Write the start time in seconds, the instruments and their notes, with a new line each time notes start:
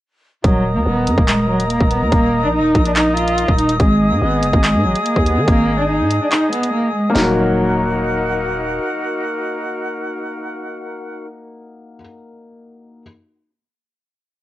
0.44 808-style bass D#1, cello F#3, flute section A#4 D#5 A#5 D#6, kick, closed hi-hat
0.76 808-style bass D#2, cello A#3
0.86 808-style bass D#1, cello B3
1.07 808-style bass F#2, closed hi-hat
1.18 808-style bass D#1, cello A#3, kick
1.28 cello G#3, clap, closed hi-hat
1.49 cello F#3
1.60 closed hi-hat
1.70 cello A#3, closed hi-hat
1.80 808-style bass D#1, kick
1.91 cello B3, closed hi-hat
2.02 808-style bass D#2
2.12 808-style bass D#1, cello A#3, kick, closed hi-hat
2.43 808-style bass A#1, cello D4
2.53 cello D#4
2.59 808-style bass D#1
2.75 808-style bass A#1, kick, closed hi-hat
2.85 cello D4, closed hi-hat
2.96 cello D#4, clap, closed hi-hat
3.17 cello F4, closed hi-hat
3.28 closed hi-hat
3.38 closed hi-hat
3.48 808-style bass D#1, kick
3.58 cello D#4, closed hi-hat
3.69 closed hi-hat
3.80 808-style bass G#1, cello G#3, flute section G#4 G#5, kick, closed hi-hat
4.11 808-style bass G#2, cello A#3
4.21 808-style bass G#1, cello B3
4.43 808-style bass F#1, closed hi-hat
4.53 808-style bass G#1, cello A#3, kick
4.64 cello G#3, clap, closed hi-hat
4.74 808-style bass G#2
4.85 808-style bass G#1, cello F#3
4.96 closed hi-hat
5.05 cello A#3, closed hi-hat
5.16 808-style bass D#2, kick
5.26 cello B3, closed hi-hat
5.37 808-style bass D#3
5.48 808-style bass G#1, cello A#3, kick, closed hi-hat
5.79 cello D4
5.90 cello D#4
6.00 808-style bass G#2
6.11 closed hi-hat
6.21 cello D4
6.32 cello D#4, clap, closed hi-hat
6.53 cello B3, closed hi-hat
6.63 closed hi-hat
6.73 cello A#3
6.95 cello G#3
7.10 felt piano A#3 D#4
7.15 808-style bass D#1, cello F#3, flute section D#4 F#4 A#4 F#5, felt piano F#4, snare, open hi-hat
7.22 felt piano A#4